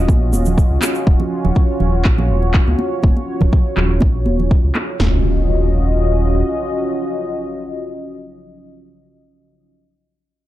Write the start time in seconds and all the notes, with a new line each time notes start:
Already playing: D#1 C#4 F4 F#4 D#5
0.09 A#1, kick, muted conga, high conga, shaker
0.33 D#1, high conga, shaker
0.45 muted conga, low conga, shaker
0.58 kick, shaker
0.71 C#2
0.81 clap, muted conga, high conga, shaker
0.95 shaker
1.06 D#1 C#5, kick
1.20 muted conga, low conga
1.45 D#1, low conga
1.55 kick, muted conga
1.80 D#1, low conga
2.05 A#1, kick, clap, muted conga
2.18 high conga, low conga
2.30 D#1
2.43 muted conga
2.54 kick, clap
2.67 C#2, high conga
2.79 muted conga, high conga
3.03 D#1, kick, high conga
3.17 muted conga
3.41 D#1, kick, low conga
3.52 kick, muted conga
3.77 D#1, clap, low conga
4.01 A#1, kick, muted conga, high conga
4.26 D#1, high conga
4.39 muted conga, low conga
4.51 kick
4.64 C#2
4.75 clap, muted conga, high conga
5.00 D#1 C#4 F4 F#4 D#5, snare, floor tom, impact